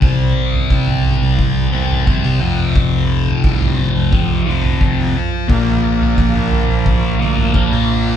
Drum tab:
T2 |------------o---|------------o---|------------o---|
FT |o--o-oo-o--o----|o--o-oo-o--o----|o--o-oo-o--o----|
BD |o---o---o---o---|o---o---o---o---|o---o---o---o---|